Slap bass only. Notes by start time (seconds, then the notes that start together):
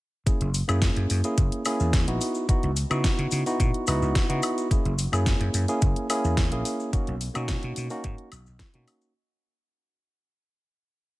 0.27 muted slap bass stroke
0.41 F#1
0.69 F#2
0.96 F#2
1.10 F#2
1.38 F#1
1.80 E2
2.08 A#1
2.49 muted slap bass stroke
2.63 C#2
2.91 C#3
3.19 C#3
3.32 C#3
3.60 A#2
3.88 C#2
4.02 C#2
4.30 C#3
4.71 muted slap bass stroke
4.85 F#1
5.12 F#2
5.40 F#2
5.54 F#2
5.82 F#1
6.24 E2
6.52 A#1
6.93 muted slap bass stroke
7.08 B1
7.36 B2
7.64 B2
7.77 B2
8.04 G#2
8.32 B1
8.47 B1
8.75 B2